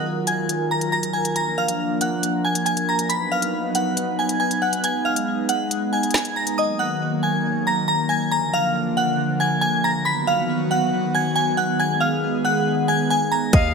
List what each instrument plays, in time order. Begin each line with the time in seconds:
Already playing: analog synth pad D#3 F#3 F4 A#4
0.27 synth bell G#5 G#6, closed hi-hat
0.49 closed hi-hat
0.71 synth bell A#5 A#6
0.81 closed hi-hat
0.92 synth bell A#5 A#6
1.03 closed hi-hat
1.13 synth bell G#5 G#6
1.25 closed hi-hat
1.36 analog synth pad F3 A#3 D4, synth bell A#5 A#6, closed hi-hat
1.58 synth bell F5 F6
1.68 closed hi-hat
2.01 synth bell F#5 F#6, closed hi-hat
2.23 closed hi-hat
2.44 synth bell G#5 G#6
2.55 closed hi-hat
2.66 synth bell G#5 G#6, closed hi-hat
2.77 closed hi-hat
2.89 synth bell A#5 A#6
2.99 closed hi-hat
3.09 analog synth pad F#3 B3 D#4 B4, synth bell B5 B6, closed hi-hat
3.32 synth bell F5 F6
3.42 closed hi-hat
3.75 synth bell F#5 F#6, closed hi-hat
3.97 closed hi-hat
4.19 synth bell G#5 G#6
4.29 closed hi-hat
4.40 synth bell G#5 G#6
4.51 closed hi-hat
4.62 synth bell F#5 F#6
4.73 closed hi-hat
4.84 analog synth pad G#3 D#4, synth bell G#5 G#6, closed hi-hat
5.05 synth bell F5 F6
5.16 closed hi-hat
5.49 synth bell F#5 F#6, closed hi-hat
5.71 closed hi-hat
5.93 synth bell G#5 G#6
6.03 closed hi-hat
6.11 snare, closed hi-hat
6.15 synth bell G#5 G#6, closed hi-hat
6.25 closed hi-hat
6.36 synth bell A#5 A#6
6.47 closed hi-hat
6.58 analog synth pad D#3 F#3 A#3, synth bell D#5 D#6
6.79 synth bell F#5 F#6
7.23 synth bell G#5 G#6
7.67 synth bell A#5 A#6
7.88 synth bell A#5 A#6
8.09 synth bell G#5 G#6
8.31 analog synth pad D3 F3 A#3, synth bell A#5 A#6
8.53 synth bell F5 F6
8.97 synth bell F#5 F#6
9.40 synth bell G#5 G#6
9.61 synth bell G#5 G#6
9.84 synth bell A#5 A#6
10.05 analog synth pad D#3 F#3 B3 F#4, synth bell B5 B6
10.27 synth bell F5 F6
10.71 synth bell F#5 F#6
11.14 synth bell G#5 G#6
11.36 synth bell G#5 G#6
11.57 synth bell F#5 F#6
11.79 analog synth pad G#3 B3 G#4, synth bell G#5 G#6
12.00 synth bell F5 F6
12.45 synth bell F#5 F#6
12.88 synth bell G#5 G#6
13.10 synth bell G#5 G#6
13.32 synth bell A#5 A#6
13.53 808-style bass D#2, analog synth pad F#3 A#3, synth bell D#5 D#6, flute F5, kick, closed hi-hat